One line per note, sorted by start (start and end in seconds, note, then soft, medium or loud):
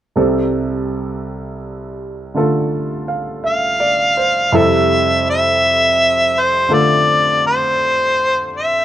0.16 4.52 C2 soft
0.16 4.51 C3 soft
0.16 4.51 G3 soft
0.16 4.52 C4 soft
0.16 2.36 A4 soft
2.35 4.52 D3 soft
2.35 4.52 A3 soft
2.35 4.53 F4 soft
2.35 4.53 A4 soft
3.08 3.64 F5 soft
3.44 4.13 E5 soft
3.44 4.58 F5 medium
3.80 4.36 D5 soft
4.17 4.73 C5 soft
4.52 8.85 F2 soft
4.52 8.85 C3 soft
4.52 8.85 G3 soft
4.52 8.85 E4 soft
4.52 6.70 A4 medium
4.57 5.28 E5 medium
5.30 6.41 E5 medium
6.39 6.75 C5 medium
6.69 8.85 D3 soft
6.69 8.85 A3 soft
6.69 8.85 F4 soft
6.69 8.85 A4 soft
6.73 7.45 D5 medium
7.47 8.50 C5 medium
8.56 8.85 E5 medium